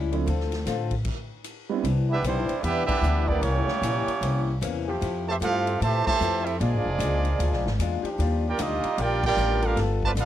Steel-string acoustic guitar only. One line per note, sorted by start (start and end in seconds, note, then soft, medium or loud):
0.00 0.14 A2 medium
0.00 0.14 G3 medium
0.00 0.14 C#4 medium
0.00 0.15 E4 medium
0.26 0.53 D3 medium
0.26 0.53 C4 medium
0.26 0.54 F4 medium
0.26 0.54 A4 medium
0.66 0.93 D3 medium
0.66 0.93 C4 medium
0.66 0.94 F4 medium
0.66 0.93 A4 medium
1.85 2.12 C3 medium
1.85 2.12 E3 medium
1.85 2.12 B3 medium
1.85 2.13 D4 medium
2.24 2.51 C3 medium
2.24 2.52 E3 medium
2.24 2.51 B3 medium
2.24 2.52 D4 medium
2.64 2.91 C3 soft
2.64 2.92 E3 soft
2.64 2.92 B3 medium
2.64 2.92 D4 medium
3.03 3.30 C3 medium
3.03 3.31 E3 medium
3.03 3.31 B3 medium
3.03 3.31 D4 medium
3.43 3.70 C3 medium
3.43 3.70 E3 medium
3.43 3.71 A#3 medium
3.43 3.71 C#4 medium
3.82 4.09 C3 medium
3.82 4.10 E3 medium
3.82 4.10 A#3 medium
3.82 4.10 C#4 medium
4.22 4.49 C3 medium
4.22 4.49 E3 medium
4.22 4.50 A#3 medium
4.22 4.51 C#4 medium
4.61 4.88 C3 medium
4.61 4.89 E3 medium
4.61 4.90 A#3 medium
4.61 4.89 C#4 medium
5.01 5.28 F3 medium
5.01 5.29 A3 medium
5.01 5.29 E4 medium
5.01 5.29 G4 medium
5.40 5.67 F3 medium
5.40 5.68 A3 medium
5.40 5.68 E4 medium
5.40 5.69 G4 medium
5.80 6.07 F3 soft
5.80 6.08 A3 medium
5.80 6.09 E4 medium
5.80 6.09 G4 medium
6.20 6.47 F3 medium
6.20 6.48 A3 medium
6.20 6.48 E4 medium
6.20 6.48 G4 medium
6.59 6.87 A#2 soft
6.59 6.87 G#3 medium
6.59 6.87 D4 medium
6.59 6.88 F4 medium
6.99 7.26 A#2 medium
6.99 7.27 G#3 medium
6.99 7.27 D4 medium
6.99 7.27 F4 medium
7.39 7.66 A#2 medium
7.39 7.66 G#3 medium
7.39 7.67 D4 medium
7.39 7.67 F4 medium
7.80 8.06 A#2 medium
7.80 8.07 G#3 medium
7.80 8.07 D4 medium
7.80 8.07 F4 medium
8.18 8.45 D#3 medium
8.18 8.46 G3 medium
8.18 8.47 D4 medium
8.18 8.46 F4 medium
8.57 8.85 D#3 medium
8.57 8.85 G3 medium
8.57 8.85 D4 medium
8.57 8.86 F4 medium
8.98 9.25 D#3 soft
8.98 9.25 G3 medium
8.98 9.25 D4 soft
8.98 9.26 F4 medium
9.37 9.64 D#3 medium
9.37 9.65 G3 medium
9.37 9.65 D4 medium
9.37 9.65 F4 medium
9.77 10.04 G3 medium
9.77 10.04 B3 medium
9.77 10.05 F4 medium
9.77 10.05 A4 medium
10.16 10.25 G3 medium
10.16 10.25 B3 medium
10.16 10.25 F4 medium
10.16 10.25 A4 medium